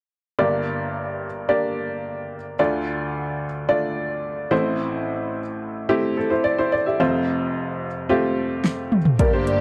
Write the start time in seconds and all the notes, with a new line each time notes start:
0.39 G1 G2 A#3 D4 G4 D5
1.49 A#3 D4 G4 D5
2.59 D2 D3 A3 D4 F4 D5
3.69 A3 D4 F4 D5
4.51 A1 A2 A3 C4 E4 C5
5.89 A3 C4 E4 G4
6.17 C4 A4
6.30 E4 C5
6.44 D5
6.58 E4 C5
6.72 D5
6.86 G4 E5
7.00 F1 F2 A3 C4 F4 C5
8.09 A3 C4 F4 G4
8.64 snare
8.92 mid tom
9.05 floor tom
9.19 G1 G2 D3 A#3 D4 G4 A#4 D5, kick, closed hi-hat
9.33 A#3 D4 G4 C5
9.47 D5, closed hi-hat